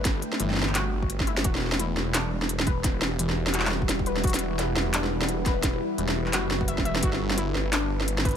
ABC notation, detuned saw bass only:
X:1
M:4/4
L:1/8
Q:"Swing 16ths" 1/4=172
K:Em
V:1 name="Detuned saw bass" clef=bass
G,,, z G,,,3 G,,,3 | E,,,3 E,,,4- E,,,- | E,,, E,,,6 E,,, | E,,,3 E,,,4- E,,,- |
E,,, z E,,,2 F,,,3 E,,, | G,,,3 G,,,4- G,,, |]